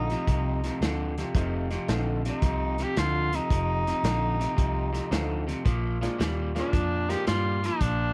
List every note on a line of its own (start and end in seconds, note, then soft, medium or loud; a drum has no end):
0.00 0.14 A#1 medium
0.00 0.24 F3 medium
0.00 0.24 A3 medium
0.00 0.24 C4 medium
0.00 0.24 D#4 medium
0.00 1.15 D#4 medium
0.00 0.24 F4 medium
0.10 0.26 F2 medium
0.10 0.27 C3 medium
0.10 snare soft
0.10 closed hi-hat medium
0.27 0.69 C2 medium
0.27 0.60 F2 medium
0.27 0.60 C3 medium
0.27 kick medium
0.27 closed hi-hat medium
0.64 0.80 F2 medium
0.64 0.80 C3 medium
0.64 snare soft
0.64 closed hi-hat medium
0.81 1.22 D2 medium
0.81 1.14 F2 medium
0.81 1.14 D3 medium
0.81 snare medium
0.81 closed hi-hat medium
1.18 1.34 F2 medium
1.18 1.34 C3 medium
1.18 snare soft
1.18 closed hi-hat medium
1.35 1.76 F1 medium
1.35 1.67 F2 medium
1.35 1.68 C3 medium
1.35 1.68 F3 medium
1.35 1.68 A3 medium
1.35 1.68 C4 medium
1.35 1.68 D#4 medium
1.35 1.68 F4 medium
1.35 kick loud
1.35 closed hi-hat medium
1.71 1.87 F2 medium
1.71 1.87 C3 medium
1.71 snare soft
1.71 closed hi-hat medium
1.88 2.30 A#1 medium
1.88 2.21 F2 medium
1.88 2.21 D3 medium
1.88 2.21 F3 medium
1.88 2.21 A3 medium
1.88 2.21 C4 medium
1.88 2.21 D#4 medium
1.88 2.21 F4 medium
1.88 snare loud
1.88 closed hi-hat medium
2.25 2.41 F2 medium
2.25 2.42 C3 medium
2.25 2.84 D#4 medium
2.25 snare soft
2.25 closed hi-hat medium
2.42 2.83 C2 medium
2.42 2.75 F2 medium
2.42 2.76 C3 medium
2.42 kick medium
2.42 closed hi-hat medium
2.78 2.95 F2 medium
2.78 2.95 C3 medium
2.78 snare soft
2.78 closed hi-hat medium
2.83 3.00 G4 loud
2.97 3.38 D2 medium
2.97 3.29 F2 medium
2.97 3.29 D3 loud
2.97 3.37 F4 medium
2.97 snare loud
2.97 closed hi-hat medium
3.33 3.49 F2 medium
3.33 3.49 C3 medium
3.33 5.49 D#4 loud
3.33 snare soft
3.33 closed hi-hat medium
3.50 3.91 F1 medium
3.50 3.83 F2 medium
3.50 3.83 C3 medium
3.50 kick loud
3.50 closed hi-hat medium
3.87 4.03 F2 medium
3.87 4.03 C3 medium
3.87 snare soft
3.87 closed hi-hat medium
4.03 4.45 A#1 medium
4.03 4.37 F2 medium
4.03 4.37 D3 medium
4.03 snare loud
4.03 closed hi-hat medium
4.40 4.55 F2 medium
4.40 4.56 C3 medium
4.40 snare soft
4.40 closed hi-hat medium
4.56 4.99 C2 medium
4.56 4.90 F2 medium
4.56 4.90 C3 medium
4.56 kick medium
4.56 closed hi-hat medium
4.93 5.09 F2 medium
4.93 5.09 C3 medium
4.93 snare soft
4.93 closed hi-hat medium
5.11 5.53 D2 medium
5.11 5.44 F2 medium
5.11 5.44 D3 medium
5.11 5.44 F3 medium
5.11 5.44 A3 medium
5.11 5.44 C4 medium
5.11 5.44 D#4 soft
5.11 5.45 F4 medium
5.11 snare loud
5.11 closed hi-hat medium
5.47 5.63 F2 medium
5.47 5.64 C3 medium
5.47 snare soft
5.47 closed hi-hat medium
5.65 6.07 A#1 medium
5.65 5.98 A#2 medium
5.65 5.98 F3 medium
5.65 kick loud
5.65 closed hi-hat medium
6.01 6.17 A#2 medium
6.01 6.18 F3 medium
6.01 6.18 G#3 medium
6.01 6.18 A#3 medium
6.01 6.18 D4 medium
6.01 6.18 F4 medium
6.01 snare soft
6.01 closed hi-hat medium
6.18 6.61 D#2 medium
6.18 6.51 A#2 medium
6.18 6.52 G3 medium
6.18 snare loud
6.18 closed hi-hat medium
6.55 6.71 A#2 medium
6.55 6.71 F3 medium
6.55 6.72 F3 medium
6.55 6.71 G#3 medium
6.55 6.71 A#3 medium
6.55 6.72 D4 medium
6.55 7.11 D4 medium
6.55 6.71 F4 medium
6.55 snare soft
6.55 closed hi-hat medium
6.73 7.14 F2 medium
6.73 7.06 A#2 medium
6.73 7.06 F3 medium
6.73 kick loud
6.73 closed hi-hat medium
7.08 7.25 A#2 medium
7.08 7.25 F3 medium
7.08 7.26 F3 medium
7.08 7.25 G#3 medium
7.08 7.25 A#3 medium
7.08 7.25 D4 medium
7.08 7.25 F4 medium
7.08 7.27 G4 medium
7.08 snare soft
7.08 closed hi-hat medium
7.27 7.68 G2 medium
7.27 7.59 A#2 medium
7.27 7.60 G3 medium
7.27 7.68 F4 medium
7.27 snare loud
7.27 closed hi-hat medium
7.63 7.79 A#2 medium
7.63 7.79 F3 medium
7.63 8.13 D4 medium
7.63 snare soft
7.63 closed hi-hat medium
7.81 8.13 A#1 medium
7.81 8.13 A#2 medium
7.81 8.13 F3 medium
7.81 kick loud
7.81 closed hi-hat medium